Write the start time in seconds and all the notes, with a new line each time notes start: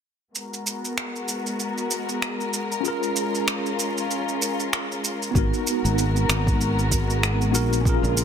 0.35 G#3 B3 F#4 A#4, shaker
0.54 shaker
0.67 shaker
0.85 shaker
0.98 finger snap, shaker
1.16 shaker
1.28 shaker
1.47 shaker
1.60 shaker
1.78 shaker
1.91 shaker
2.09 shaker
2.22 finger snap, shaker
2.41 shaker
2.54 shaker
2.72 shaker
2.80 C#4 F4
2.85 C#4 F4 G#4 A#4, shaker
3.03 shaker
3.16 shaker
3.35 shaker
3.48 finger snap, shaker
3.66 shaker
3.79 shaker
3.98 shaker
4.11 shaker
4.29 shaker
4.42 shaker
4.60 shaker
4.73 finger snap, shaker
4.92 shaker
5.04 shaker
5.22 shaker
5.31 B3 D#4
5.35 G#1 G#3 B3 F#4 A#4, kick, shaker
5.54 shaker
5.67 shaker
5.84 G#1, shaker
5.98 shaker
6.16 shaker
6.29 G#1, finger snap, shaker
6.47 kick, shaker
6.61 shaker
6.79 shaker
6.92 kick, shaker
7.10 shaker
7.23 finger snap, shaker
7.42 shaker
7.52 A#1 B3 D#4 F#4 A#4, shaker
7.73 shaker
7.81 C#4 F4
7.85 C#3 F4 G#4 A#4, kick, shaker
7.89 A#4
8.03 A#1, shaker
8.17 shaker